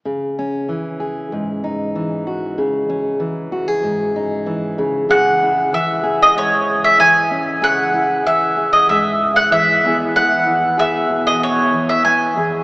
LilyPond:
<<
  \new Staff \with { instrumentName = "Mandolin" } { \time 4/4 \key cis \minor \tempo 4 = 95 r1 | r1 | fis''4 e''8. dis''16 cis''8. e''16 gis''8. r16 | fis''4 e''8. dis''16 e''8. fis''16 e''8. r16 |
fis''4 e''8. dis''16 cis''8. e''16 gis''8. r16 | }
  \new Staff \with { instrumentName = "Steel-string acoustic guitar" } { \clef bass \time 4/4 \key cis \minor << { r8 cis'4 gis'4 dis'4 fis'8 | r8 cis'4 fis'16 gis'8. dis'4 r8 | gis'8 e'4 gis'2 cis'8 | gis'8 e'4 gis'2 <e b e' gis'>8 |
e'4 gis'2 b8 gis'8 | } \\ { cis4 e4 gis,4 e4 | cis4 e4 gis,4 e8 cis8 | cis4 e4 gis,4 e4 | cis4 e4 gis,4 e8 e,8~ |
e,8 e4 b,4 e4 e,8 | } >> }
>>